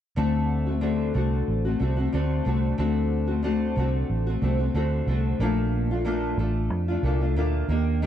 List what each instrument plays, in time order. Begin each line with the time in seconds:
0.16 fingered electric bass D2, nylon-string guitar D3 A3 C4 F#4
0.67 nylon-string guitar A3 C4 F#4
0.81 nylon-string guitar D3 A3 C4 F#4
1.14 fingered electric bass C2, nylon-string guitar D3 A3 C4 F#4
1.48 fingered electric bass A1
1.65 nylon-string guitar A3 C4 F#4
1.79 fingered electric bass C2, nylon-string guitar D3 A3 C4 F#4
1.97 nylon-string guitar A3 C4 F#4
2.13 fingered electric bass D2, nylon-string guitar D3 A3 C4 F#4
2.45 fingered electric bass C2, nylon-string guitar D3 A3 C4 F#4
2.78 fingered electric bass D2, nylon-string guitar D3 A3 C4 F#4
3.27 nylon-string guitar A3 C4 F#4
3.43 nylon-string guitar D3 A3 C4 F#4
3.76 fingered electric bass C2, nylon-string guitar D3 A3 C4 F#4
4.10 fingered electric bass A1
4.27 nylon-string guitar A3 C4 F#4
4.42 fingered electric bass C2, nylon-string guitar D3 A3 C4 F#4
4.59 nylon-string guitar A3 C4 F#4
4.74 fingered electric bass D2, nylon-string guitar D3 A3 C4 F#4
5.07 fingered electric bass C2, nylon-string guitar D3 A3 C4
5.11 nylon-string guitar F#4
5.39 fingered electric bass A#1, nylon-string guitar A#2 A3 D4 F4
5.91 nylon-string guitar A3 D4 F4
6.05 nylon-string guitar A#2 A3 D4 F4
6.38 fingered electric bass A1, nylon-string guitar A3 D4 F4
6.70 fingered electric bass F2
6.88 nylon-string guitar A3 D4 F4
7.03 fingered electric bass C2, nylon-string guitar A#2 A3 D4
7.07 nylon-string guitar F4
7.21 nylon-string guitar A3 D4 F4
7.36 fingered electric bass D2, nylon-string guitar A#2 A3 D4 F4
7.68 fingered electric bass D#2, nylon-string guitar D#3 A#3 D4 G4
8.02 nylon-string guitar D#3 A#3